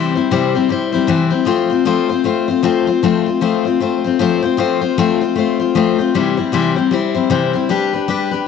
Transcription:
Already playing: C3 E3 G3 C4 E4 C5
0.15 G3 C4 E4 C5
0.31 C3 E3 G3 C4 E4 C5
0.55 G3 C4 E4 C5
0.69 G3 C4 E4 C5
0.92 G3 C4 E4 C5
1.07 C3 E3 G3 C4 E4 C5
1.30 G3 C4 E4 C5
1.45 F3 A3 C4 F4 C5
1.70 C4 F4 C5
1.85 F3 A3 C4 F4 C5
2.09 C4 F4 C5
2.24 A3 C4 F4 C5
2.48 C4 F4 C5
2.63 F3 A3 C4 F4 C5
2.87 C4 F4 C5
3.03 F3 A3 C4 F4 C5
3.26 C4 F4 C5
3.41 F3 A3 C4 F4 C5
3.65 C4 F4 C5
3.80 A3 C4 F4 C5
4.04 C4 F4 C5
4.19 F3 A3 C4 F4 C5
4.42 C4 F4 C5
4.57 F3 A3 C4 F4 C5
4.81 C4 F4 C5
4.98 F3 A3 C4 F4 C5
5.21 C4 F4 C5
5.35 A3 C4 F4 C5
5.59 C4 F4 C5
5.75 F3 A3 C4 F4 C5
5.98 C4 F4 C5
6.14 C3 E3 G3 C4 E4 C5
6.37 G3 E4 C5
6.52 C3 E3 G3 C4 E4 C5
6.76 G3 C4 E4 C5
6.91 G3 C4 E4 C5
7.14 G3 C4 E4 C5
7.30 C3 E3 G3 C4 E4 C5
7.53 G3 C4 E4 C5
7.69 G3 D4 G4 B4
7.93 D4 G4 B4
8.08 G3 D4 G4 B4
8.31 D4 G4 B4

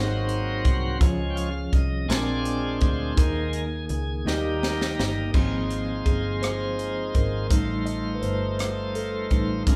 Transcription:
Already playing: G#1 G#2 F#3 A#3 C4 D#4 F#4 G#4 C5 D#5
0.00 C5
0.29 closed hi-hat
0.65 C2, kick, closed hi-hat
0.99 C#2 F3 G#3 C#4 F4 G#4 C#5, kick, closed hi-hat
1.30 G5
1.35 F5, closed hi-hat
1.73 C2 D#5, kick, closed hi-hat
2.06 A#1 A#2 G#3 C4 C#4 D4 F4 G#4 A#4 D5, closed hi-hat
2.11 D4, snare
2.45 closed hi-hat
2.81 D2 G#4 C5, kick, closed hi-hat
3.15 D#2 D#3 G#3 A#3 D#4 G#4 A#4, kick, closed hi-hat
3.53 closed hi-hat
3.89 C#2 G#4, closed hi-hat
4.25 D#2 D#3 G3 A#3 D#4 F#4 G4 A#4, snare
4.34 G4
4.63 snare
4.81 snare
4.99 G1, snare
5.33 G#1 F3 G#3 A#3 C4 D#4 F4 C5, kick, crash
5.71 closed hi-hat
6.06 G1 G#4, kick, closed hi-hat
6.42 C5, cross-stick, closed hi-hat
6.79 closed hi-hat
7.15 G#1 A#4, kick, closed hi-hat
7.50 A1 G3 A3 D#4 F4 C5, kick, closed hi-hat
7.86 D#5, closed hi-hat
8.15 B4
8.22 G1 C5, closed hi-hat
8.59 cross-stick, closed hi-hat
8.95 A4, closed hi-hat
9.30 A1 G3 A3 D#4, kick, closed hi-hat
9.67 A#1 G#3 C4 D4 F4 A#4, kick, closed hi-hat

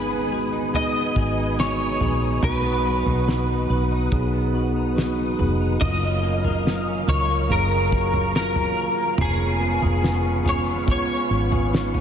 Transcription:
Already playing: G#1 G#2 D#3 G#3 B3 D#4 G#4 B4 G#5 D#6
0.10 D#4
0.30 G#3 B3 D#4 F#4 G#4
0.52 D#4
0.72 G#2 G#3 B3 D#4 G#4 D#5, floor tom
0.95 B3
1.15 G#1 G#3 B3 D#4 F#4 G#4, kick
1.38 D#4
1.57 G#3 B3 D#4 F#4 G#4 C#5, snare
1.80 D#4
2.00 A#1 G#3 B3 D#4 G#4, floor tom
2.22 D#4
2.42 B1 B2 F#3 B3 F#4 B4 F#5, floor tom
2.64 B3
2.85 F#3 B3 D#4 F#4 B4
3.06 B1 D#4, floor tom
3.27 F#3 B3 D#4 F#4 B4, snare
3.49 D#4
3.68 B1 F#3 B3 D#4 F#4 B4
3.91 D#4
4.00 A#4
4.11 B1 B2 F#3 B3 D#4 G#4, kick, floor tom
4.33 B3
4.53 F#3 B3 D#4 F#4 B4
4.76 D#4
4.95 F#3 B3 D#4 F#4 B4, snare
5.18 D#4
5.37 F1 F#3 B3 D#4 G#4 B4, floor tom
5.61 D#4
5.80 F#1 F#2 C#3 F#3 A#3 F4 A#4 D#5 F5, kick, floor tom, crash
6.02 C#4
6.22 F#3 A#3 C#4 F4
6.44 A#4, floor tom
6.64 F#3 A#3 C#4 F4, snare
6.88 C#4
7.06 C#2 F#3 A#3 C#4 F4 A#4 C#5, floor tom
7.30 A#3
7.48 F#1 F#2 F#3 A#3 C#4 G#4 A#4, floor tom
7.72 C#4
7.91 F#3 A#3 C#4 F#4, kick
8.14 A#4, floor tom
8.33 F#3 A#3 C#4 F4 A#4, snare
8.56 C#4, floor tom
8.75 F#3 A#3 C#4 F4 A#4
8.98 A#3
9.18 F1 F3 G#3 B3 C#4 F4 G#4 B4 F5 C#6, floor tom
9.40 C#4
9.59 G#3 B3 C#4 F4
9.82 F1 G#4, floor tom
10.01 G#3 B3 C#4 F4, snare
10.24 C#4
10.43 G#3 B3 C#4 F4 G#4, floor tom
10.49 C#5
10.66 B3
10.86 F3 G#3 B3 C#4 F4, kick, floor tom
10.91 C#5
11.09 C#4
11.28 G#1 G#3 B3 C#4 F4
11.51 G#4, floor tom
11.71 G#3 B3 C#4 D#4, snare
11.93 C#4, floor tom

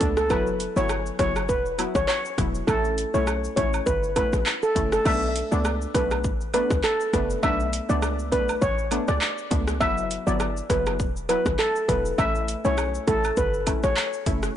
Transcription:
0.00 C#2 A3 B3 D4, kick, closed hi-hat, cabasa, shaker
0.17 A4, cross-stick, shaker
0.30 F#1 F#3 B3 E4 B4, kick, high woodblock, shaker
0.47 shaker
0.60 closed hi-hat, cabasa, shaker
0.76 G1 F#3 B3 E4 C#5, shaker
0.89 cross-stick, high woodblock, shaker
1.06 shaker
1.19 F#1 F#3 B3 E4 C#5, kick, cross-stick, closed hi-hat, cabasa, shaker
1.36 cross-stick, high woodblock, shaker
1.49 E1 B4, kick, shaker
1.66 shaker
1.78 F#3 B3 E4, closed hi-hat, cabasa, high woodblock, shaker
1.95 G1 C#5, kick, cross-stick, shaker
2.08 C#5, clap, high woodblock, shaker
2.25 shaker
2.38 E1 F#3 B3 E4, kick, cross-stick, closed hi-hat, cabasa, shaker
2.55 shaker
2.67 A1 A3 C#4 E4 A4, kick, high woodblock, shaker
2.85 shaker
2.98 closed hi-hat, cabasa, shaker
3.14 B1 A3 C#4 E4 C#5, shaker
3.27 cross-stick, high woodblock, shaker
3.44 shaker
3.56 A1 A3 C#4 E4 C#5, kick, closed hi-hat, cabasa, shaker
3.74 high woodblock, shaker
3.86 G1 B4, kick, shaker
4.03 shaker
4.16 A3 C#4 E4 B4, kick, closed hi-hat, cabasa, high woodblock, shaker
4.33 A1, cross-stick, shaker
4.46 clap, high woodblock, shaker
4.63 A4, shaker
4.75 F#1 A3 C#4 E4, kick, closed hi-hat, cabasa, shaker
4.92 A4, cross-stick, shaker
5.05 B1 A3 B3 D4 E5, kick, crash, high woodblock, shaker
5.22 shaker
5.36 closed hi-hat, cabasa, shaker
5.52 C#2 A3 B3 D4 D5, shaker
5.65 cross-stick, high woodblock, shaker
5.82 shaker
5.94 B1 A3 B3 D4 B4, kick, cross-stick, closed hi-hat, cabasa, shaker
6.11 cross-stick, high woodblock, shaker
6.24 A1, kick, shaker
6.41 shaker
6.54 A3 B3 D4 B4, closed hi-hat, cabasa, high woodblock, shaker
6.71 C#2, kick, cross-stick, shaker
6.84 A4, clap, high woodblock, shaker
7.01 shaker
7.13 F#1 A3 B3 D4 B4, kick, cross-stick, closed hi-hat, cabasa, shaker
7.30 shaker
7.43 B1 A3 B3 D4 E5, kick, high woodblock, shaker
7.60 shaker
7.73 closed hi-hat, cabasa, shaker
7.89 C#2 A3 B3 D4 D5, shaker
8.02 cross-stick, high woodblock, shaker
8.19 shaker
8.32 B1 A3 B3 D4 B4, kick, closed hi-hat, cabasa, shaker
8.49 high woodblock, shaker
8.62 A1 C#5, kick, shaker
8.79 shaker
8.91 A3 B3 D4, closed hi-hat, cabasa, high woodblock, shaker
9.08 C#2 D5, cross-stick, shaker
9.21 clap, high woodblock, shaker
9.38 shaker
9.51 C#2 A3 B3 D4, kick, closed hi-hat, cabasa, shaker
9.68 cross-stick, shaker
9.80 F#1 F#3 B3 E4 E5, kick, high woodblock, shaker
9.98 shaker
10.11 closed hi-hat, cabasa, shaker
10.27 G1 F#3 B3 E4 D5, shaker
10.40 cross-stick, high woodblock, shaker
10.57 shaker
10.70 F#1 F#3 B3 E4 B4, kick, cross-stick, closed hi-hat, cabasa, shaker
10.86 cross-stick, high woodblock, shaker
11.00 E1, kick, shaker
11.16 shaker
11.29 F#3 B3 E4 B4, closed hi-hat, cabasa, high woodblock, shaker
11.46 G1, kick, cross-stick, shaker
11.59 A4, clap, high woodblock, shaker
11.76 shaker
11.88 E1 F#3 B3 E4 B4, kick, cross-stick, closed hi-hat, cabasa, shaker
12.05 shaker
12.18 A1 A3 C#4 E4 E5, kick, high woodblock, shaker
12.35 shaker
12.48 closed hi-hat, cabasa, shaker
12.65 B1 A3 C#4 E4 C#5, shaker
12.78 cross-stick, high woodblock, shaker
12.95 shaker
13.07 A1 A3 C#4 E4 A4, kick, closed hi-hat, cabasa, shaker
13.24 high woodblock, shaker
13.37 G1 B4, kick, shaker
13.54 shaker
13.67 A3 C#4 E4, kick, closed hi-hat, cabasa, high woodblock, shaker
13.83 A1 C#5, cross-stick, shaker
13.97 clap, high woodblock, shaker
14.13 shaker
14.26 F#1 A3 C#4 E4, kick, closed hi-hat, cabasa, shaker
14.43 cross-stick, shaker

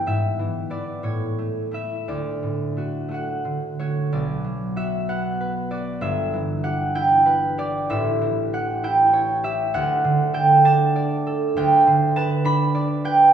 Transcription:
Already playing: B3 E4 B5
0.07 G#2 E5
0.39 E3
0.70 B3 E4 D5
1.03 A2 C#5
1.39 A3
1.71 A3 E4 E5
2.08 D2 D5
2.43 A2
2.77 A3 F#4
3.09 A3 F#4
3.14 F#5
3.45 D3
3.79 A3 F#4 C#5
4.12 B1 D5
4.44 F#3
4.76 F#4 E5
5.09 B3 F#5
5.41 B4
5.71 F#4 D5
6.01 G1 G2 E5
6.34 E3
6.64 G4 F#5
6.95 E4 G5
7.26 B4
7.58 G4 D5
7.90 A1 A2 E5
8.21 E3
8.53 G4 F#5
8.83 E4 G5
9.13 C#5
9.44 G4 E5
9.74 D2 F#5
10.04 D3
10.34 A4 G5
10.65 D4 A5
10.96 D5
11.27 A4
11.56 D2 G5
11.87 D3
12.16 B4 A5
12.45 D4 B5
12.75 D5
13.05 B4 G5

